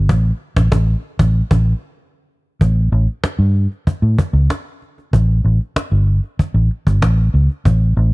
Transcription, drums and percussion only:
0.09 cajon bass loud
0.09 cajon slap medium
0.57 cajon bass loud
0.57 cajon slap loud
0.72 cajon bass loud
0.72 cajon slap loud
1.19 cajon bass loud
1.19 cajon slap loud
1.51 cajon bass loud
1.51 cajon slap loud
2.61 cajon bass loud
2.92 cajon slap soft
3.08 cajon slap soft
3.24 cajon slap loud
3.55 cajon slap soft
3.72 cajon slap soft
3.87 cajon bass medium
4.18 cajon bass loud
4.35 cajon slap soft
4.50 cajon slap loud
4.82 cajon slap soft
4.98 cajon slap soft
5.13 cajon bass loud
5.45 cajon slap soft
5.61 cajon slap soft
5.76 cajon slap loud
6.08 cajon slap soft
6.24 cajon slap soft
6.39 cajon bass medium
6.71 cajon slap soft
6.87 cajon bass medium
7.02 cajon slap loud
7.35 cajon slap soft
7.50 cajon slap soft
7.65 cajon bass loud
7.97 cajon slap soft

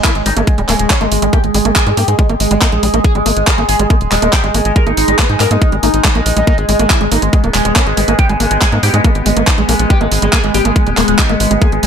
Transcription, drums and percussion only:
0.04 kick loud
0.04 clap loud
0.04 closed hi-hat medium
0.15 closed hi-hat soft
0.26 open hi-hat medium
0.37 closed hi-hat medium
0.47 kick loud
0.47 closed hi-hat medium
0.58 closed hi-hat soft
0.69 clap medium
0.69 open hi-hat loud
0.79 closed hi-hat medium
0.90 kick loud
0.90 clap loud
0.90 closed hi-hat medium
1.01 closed hi-hat soft
1.12 open hi-hat medium
1.22 closed hi-hat medium
1.33 kick loud
1.33 closed hi-hat medium
1.44 closed hi-hat soft
1.54 open hi-hat loud
1.65 closed hi-hat medium
1.76 kick loud
1.76 clap loud
1.76 closed hi-hat medium
1.87 closed hi-hat soft
1.97 open hi-hat loud
2.08 closed hi-hat medium
2.19 kick loud
2.19 closed hi-hat medium
2.29 closed hi-hat soft
2.40 open hi-hat loud
2.51 closed hi-hat medium
2.62 kick loud
2.62 clap loud
2.62 closed hi-hat medium
2.72 closed hi-hat soft
2.83 open hi-hat medium
2.94 closed hi-hat medium
3.04 kick loud
3.04 closed hi-hat medium
3.15 closed hi-hat soft
3.26 open hi-hat loud
3.37 closed hi-hat soft
3.47 kick loud
3.47 clap loud
3.47 closed hi-hat medium
3.58 closed hi-hat soft
3.69 open hi-hat loud
3.79 closed hi-hat medium
3.90 kick loud
3.90 closed hi-hat medium
4.01 closed hi-hat soft
4.12 clap medium
4.12 open hi-hat loud
4.22 closed hi-hat medium
4.33 kick loud
4.33 clap loud
4.33 closed hi-hat medium
4.44 closed hi-hat soft
4.54 open hi-hat loud
4.65 closed hi-hat medium
4.76 kick loud
4.76 closed hi-hat medium
4.87 closed hi-hat soft
4.97 open hi-hat loud
5.08 closed hi-hat medium
5.19 kick loud
5.19 clap loud
5.19 closed hi-hat medium
5.29 closed hi-hat soft
5.40 clap medium
5.40 open hi-hat loud
5.51 closed hi-hat medium
5.62 kick loud
5.62 closed hi-hat medium
5.72 closed hi-hat soft
5.83 open hi-hat loud
5.94 closed hi-hat soft
6.04 kick loud
6.04 clap loud
6.04 closed hi-hat medium
6.15 closed hi-hat soft
6.26 open hi-hat medium
6.37 closed hi-hat soft
6.47 kick loud
6.47 closed hi-hat medium
6.58 closed hi-hat soft
6.69 open hi-hat loud
6.79 closed hi-hat medium
6.90 kick loud
6.90 clap loud
6.90 closed hi-hat soft
7.01 closed hi-hat soft
7.12 open hi-hat loud
7.22 closed hi-hat soft
7.33 kick loud
7.33 closed hi-hat medium
7.44 closed hi-hat soft
7.54 clap medium
7.54 open hi-hat loud
7.65 closed hi-hat medium
7.76 kick loud
7.76 clap loud
7.76 closed hi-hat medium
7.87 closed hi-hat soft
7.97 open hi-hat loud
8.08 closed hi-hat medium
8.19 kick loud
8.19 closed hi-hat medium
8.29 closed hi-hat soft
8.40 open hi-hat loud
8.51 closed hi-hat medium
8.62 kick loud
8.62 clap loud
8.62 closed hi-hat medium
8.72 closed hi-hat soft
8.83 open hi-hat medium
8.94 closed hi-hat soft
9.04 kick loud
9.04 closed hi-hat medium
9.15 closed hi-hat soft
9.26 open hi-hat loud
9.37 closed hi-hat medium
9.47 kick loud
9.47 clap loud
9.47 closed hi-hat medium
9.58 closed hi-hat soft
9.69 open hi-hat medium
9.79 closed hi-hat medium
9.90 kick loud
9.90 closed hi-hat medium
10.01 closed hi-hat soft
10.12 open hi-hat loud
10.22 closed hi-hat medium
10.33 kick loud
10.33 clap loud
10.33 closed hi-hat medium
10.44 closed hi-hat soft
10.54 open hi-hat medium
10.65 closed hi-hat medium
10.76 kick loud
10.76 closed hi-hat medium
10.87 closed hi-hat soft
10.97 clap medium
10.97 open hi-hat loud
11.08 closed hi-hat medium
11.19 kick loud
11.19 clap loud
11.19 closed hi-hat medium
11.29 closed hi-hat soft
11.40 open hi-hat medium
11.51 closed hi-hat medium
11.62 kick loud
11.62 closed hi-hat medium
11.72 closed hi-hat soft
11.83 open hi-hat loud

